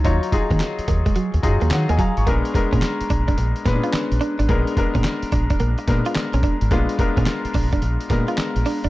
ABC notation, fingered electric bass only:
X:1
M:4/4
L:1/16
Q:"Swing 16ths" 1/4=108
K:Bbphr
V:1 name="Fingered electric bass" clef=bass
E,, z2 E, z2 E,, z2 E,, G,, E,, E, E,, z A,,, | B,,, z2 B,, z2 B,,, z B,,, z B,, z2 B,,, z A,,, | B,,, z2 B,, z2 B,,, z B,,, z B,, z2 B,,, z A,,, | B,,, z2 B,, z2 B,,, z B,,, z B,, z2 B,,, z F,,, |]